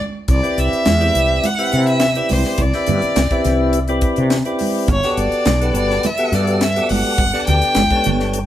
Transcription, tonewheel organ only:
0.43 C4 E4 G4 B4 D5
1.00 C4 E4 G4 B4 D5
1.58 C4 E4 G4 B4 E5
2.16 C4 E4 G4 B4 D5
2.74 C4 E4 G4 B4 E5
3.31 C4 E4 G4 B4 E5
3.89 C4 E4 G4 B4 D5
4.45 C4 E4 G4 B4 D5
5.04 B3 F#4 G4 A4 D5
5.61 B3 F#4 G4 A4 B4
6.18 B3 F#4 G4 A4 E5
6.76 B3 F#4 G4 A4 D5
7.33 B3 D4 G4 A4 D5
7.91 B3 D4 G4 A4 C#5

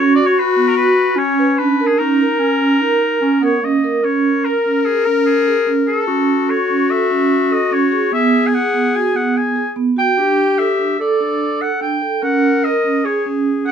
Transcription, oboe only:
Already playing: C#5
0.15 D5
0.26 C#5
0.38 B4
0.68 A#4
0.77 B4
1.18 C#5
1.58 B4
1.87 G#4
1.98 A#4
3.44 C#5
3.65 D#5
4.05 C#5
4.45 A#4
4.85 G#4
5.05 A#4
5.26 G#4
5.87 A4
6.50 C#5
6.90 E5
7.52 D#5
7.73 C#5
8.14 E5
8.47 G#5
8.54 F#5
8.96 G#5
9.16 F#5
9.37 G#5
9.98 G5
10.58 E5
11.01 D5
11.61 F#5
11.82 G5
12.23 F#5
12.64 D#5
13.06 C#5
13.67 F#5

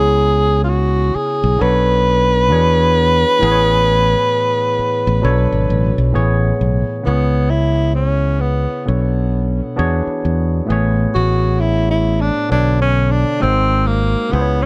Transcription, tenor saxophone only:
Already playing: G#4
0.64 F4
0.69 F#4
1.16 G#4
1.62 B4
7.06 B3
7.51 E4
7.95 C#4
8.41 B3
11.15 F#4
11.60 E4
11.91 E4
12.21 D4
12.52 D4
12.82 C#4
13.11 D4
13.42 C4
13.87 A#3
14.32 B3
14.62 C#4

